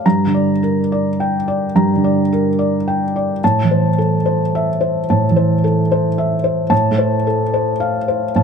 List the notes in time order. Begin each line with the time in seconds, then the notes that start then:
0.06 G2 A#5
0.27 D3
0.34 D5
0.63 A#4
0.92 D5
1.20 G5
1.48 D5
1.75 G2 A#5
1.96 D3
2.04 D5
2.33 A#4
2.59 D5
2.88 G5
3.16 D5
3.44 A2 A5
3.64 E3
3.71 C5
3.98 A4
4.26 C5
4.55 E5
4.81 C5
5.10 A2 A5
5.30 E3
5.36 C5
5.64 A4
5.92 C5
6.18 E5
6.44 C5
6.70 A2 A5
6.91 A3
6.98 C5
7.27 A4
7.54 C5
7.80 F5
8.08 C5
8.36 A2 A5